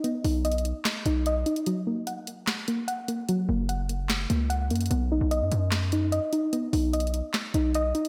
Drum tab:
HH |x-----------o-----------x---x---x---x-----------x-----------x-----------x-----------x-----x-----|x-----------------------x-----------x-----------x-----------x-----------x-----------x-----------|x-----------------------x-----------x-----------x-----------x-----------x-----------x--x--x--x--|x-----------------------x-----------x-----------x-----------x-----------x-----------x-----------|
CP |------------------------------------------------x-----------------------------------------------|------------------------------------------------x-----------------------------------------------|------------------------------------------------x-----------------------------------------------|------------------------------------------------x-----------------------------------------------|
SD |------------------------------------------------o-----------------------------------------------|------------------------------------------------o-----------------------------------------------|------------------------------------------------o-----------------------------------------------|------------------------------------------------o-----------------------------------------------|

HH |x-----------o-----------x---x---x---x-----------x-----------x-----------x-----------x-----x-----|
CP |------------------------------------------------x-----------------------------------------------|
SD |------------------------------------------------o-----------------------------------------------|